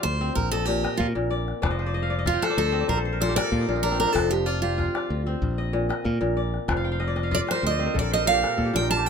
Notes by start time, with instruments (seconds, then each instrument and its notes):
Already playing: kora F3 F4 G4 D5
0.03 fingered electric bass D2, steel-string acoustic guitar C5
0.21 kora C4
0.35 fingered electric bass A#1, steel-string acoustic guitar A#4, calabash thump
0.51 steel-string acoustic guitar A4, kora D#5
0.65 kora A#2, steel-string acoustic guitar G4
0.84 kora D#5, calabash click
0.97 fingered electric bass A#2, steel-string acoustic guitar F4, kora A#4, calabash thump
1.15 fingered electric bass A#1, kora A#2
1.31 kora D5
1.48 calabash click
1.62 fingered electric bass F1, kora F3 D5, calabash thump, calabash click
1.71 kora D#5
1.79 kora C5, calabash click
1.86 kora D5
1.94 kora D#5
2.03 kora F5
2.10 kora D5
2.19 kora D#5
2.26 kora F4 F5, steel-string acoustic guitar F4, calabash thump, calabash click
2.34 kora G5
2.42 steel-string acoustic guitar A4, kora C5, calabash click
2.50 kora D5
2.57 fingered electric bass D2, steel-string acoustic guitar A4, kora D#5
2.65 kora C5
2.72 kora C4 D#5
2.81 kora D5
2.88 fingered electric bass A#1, steel-string acoustic guitar A#4, kora C5, calabash thump
2.97 kora A4
3.05 kora C5
3.13 kora A#4
3.21 kora A#2 A4, steel-string acoustic guitar C5
3.29 kora G4
3.36 kora A#4, steel-string acoustic guitar D5, calabash click
3.44 kora A4
3.52 fingered electric bass A#2, kora F4, calabash thump
3.61 kora D#4
3.69 fingered electric bass A#1, kora A#2 F4
3.76 kora D#4
3.83 kora D4, steel-string acoustic guitar A#4
3.92 kora C4
4.00 kora D4, steel-string acoustic guitar A#4, calabash click
4.07 kora D#4
4.13 fingered electric bass F1, kora F3, steel-string acoustic guitar A4, calabash thump, calabash click
4.31 steel-string acoustic guitar G4, calabash click
4.46 steel-string acoustic guitar F4, kora D5
4.62 steel-string acoustic guitar F4, kora G4
4.78 kora F4, calabash thump, calabash click
4.95 kora D5, calabash click
5.10 fingered electric bass D2
5.27 kora C4
5.42 fingered electric bass A#1, calabash thump
5.58 kora D#5
5.73 kora A#2
5.89 kora D#5, calabash click
6.05 fingered electric bass A#2, kora A#4, calabash thump
6.21 fingered electric bass A#1, kora A#2
6.37 kora D5
6.54 calabash click
6.68 fingered electric bass F1, kora F3, calabash thump, calabash click
6.77 kora F5
6.84 kora G5
6.92 kora F5
7.00 kora D#5, calabash click
7.08 kora D5
7.16 kora D#5, calabash click
7.23 kora F5
7.31 kora F4 D#5, steel-string acoustic guitar D5, calabash thump
7.39 kora D5
7.47 kora C5, steel-string acoustic guitar C5, calabash click
7.55 kora A#4
7.62 fingered electric bass D2, kora C5, calabash click
7.67 kora D5, steel-string acoustic guitar D#5
7.79 kora C4 C5
7.86 kora A#4
7.94 fingered electric bass A#1, kora A4, calabash thump
7.99 kora A#4, steel-string acoustic guitar D5
8.11 kora C5, steel-string acoustic guitar D#5
8.17 kora A#4
8.26 kora A#2 A4, steel-string acoustic guitar F5
8.33 kora G4
8.42 kora A4, calabash click
8.50 kora A#4
8.57 fingered electric bass A#2, kora A4, calabash thump, calabash click
8.65 kora G4
8.73 fingered electric bass A#1, kora A#2 F4, steel-string acoustic guitar G5
8.81 kora D#4
8.89 kora F4, steel-string acoustic guitar A5
8.97 kora G4
9.05 kora F4, steel-string acoustic guitar G5